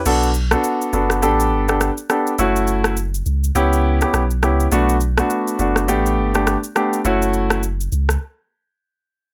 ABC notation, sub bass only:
X:1
M:4/4
L:1/16
Q:"Swing 16ths" 1/4=103
K:Bm
V:1 name="Sub bass" clef=bass
B,,,4 z2 F,,,2 A,,,2 G,,,3 z3 | F,,,6 C,,2 C,,4 B,,,2 C,,2 | B,,,4 z2 F,,,2 A,,,2 G,,,3 z3 | F,,,6 C,,2 z8 |]